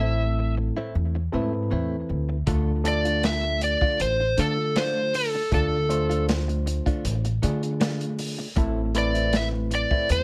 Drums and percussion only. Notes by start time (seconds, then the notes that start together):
2.47 kick, closed hi-hat
2.85 closed hi-hat
3.05 closed hi-hat
3.23 snare, closed hi-hat
3.61 closed hi-hat
3.81 kick
4.00 closed hi-hat
4.38 closed hi-hat
4.76 snare, closed hi-hat
5.14 open hi-hat
5.52 kick, closed hi-hat
5.90 closed hi-hat
6.11 closed hi-hat
6.29 snare, closed hi-hat
6.49 closed hi-hat
6.67 closed hi-hat
6.86 kick, closed hi-hat
7.05 closed hi-hat
7.25 closed hi-hat
7.43 closed hi-hat
7.63 closed hi-hat
7.81 snare, closed hi-hat
8.01 closed hi-hat
8.19 open hi-hat
8.56 kick, closed hi-hat
8.95 closed hi-hat
9.15 closed hi-hat
9.33 snare, closed hi-hat
9.71 closed hi-hat
9.91 kick
10.09 closed hi-hat